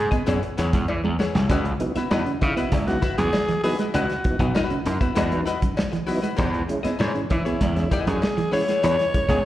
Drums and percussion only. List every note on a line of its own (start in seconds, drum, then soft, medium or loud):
0.12 kick medium
0.12 closed hi-hat medium
0.27 closed hi-hat medium
0.27 cowbell medium
0.43 closed hi-hat soft
0.58 snare soft
0.58 closed hi-hat medium
0.73 kick loud
0.73 closed hi-hat medium
0.88 cowbell medium
1.20 snare medium
1.35 snare loud
1.49 kick loud
1.49 closed hi-hat loud
1.49 cowbell medium
1.65 closed hi-hat soft
1.80 closed hi-hat medium
1.96 snare soft
1.96 closed hi-hat medium
2.11 snare loud
2.11 cowbell medium
2.26 closed hi-hat soft
2.41 kick medium
2.41 closed hi-hat medium
2.57 closed hi-hat medium
2.72 kick medium
2.72 closed hi-hat medium
2.72 cowbell medium
2.88 snare soft
2.88 closed hi-hat soft
3.03 kick loud
3.03 closed hi-hat medium
3.18 snare soft
3.18 closed hi-hat medium
3.33 snare loud
3.33 cowbell loud
3.48 snare soft
3.48 closed hi-hat soft
3.64 open hi-hat medium
3.79 snare soft
3.79 closed hi-hat soft
3.94 closed hi-hat medium
3.94 cowbell medium
4.10 snare soft
4.10 closed hi-hat soft
4.24 kick medium
4.24 closed hi-hat medium
4.39 kick medium
4.39 closed hi-hat soft
4.55 snare loud
4.55 cowbell medium
4.70 closed hi-hat soft
4.86 closed hi-hat medium
5.01 kick loud
5.01 closed hi-hat soft
5.16 closed hi-hat loud
5.16 cowbell medium
5.32 closed hi-hat soft
5.47 snare soft
5.47 closed hi-hat medium
5.62 kick medium
5.62 closed hi-hat medium
5.77 snare loud
5.77 cowbell loud
5.93 snare soft
5.93 closed hi-hat soft
6.08 open hi-hat medium
6.24 closed hi-hat medium
6.38 kick loud
6.38 closed hi-hat medium
6.38 cowbell medium
6.54 closed hi-hat soft
6.69 closed hi-hat medium
6.85 snare soft
6.85 closed hi-hat medium
7.00 snare loud
7.00 cowbell medium
7.15 closed hi-hat soft
7.30 kick loud
7.30 closed hi-hat medium
7.46 closed hi-hat medium
7.61 kick medium
7.61 closed hi-hat medium
7.61 cowbell medium
7.76 snare soft
7.76 closed hi-hat soft
7.92 kick medium
7.92 closed hi-hat medium
8.07 snare soft
8.07 closed hi-hat medium
8.22 snare loud
8.22 cowbell loud
8.38 snare soft
8.38 closed hi-hat soft
8.53 open hi-hat medium
8.68 snare soft
8.68 closed hi-hat medium
8.84 closed hi-hat medium
8.84 cowbell medium
8.99 snare soft
8.99 closed hi-hat soft
9.14 kick medium
9.14 closed hi-hat medium
9.29 kick medium
9.29 closed hi-hat medium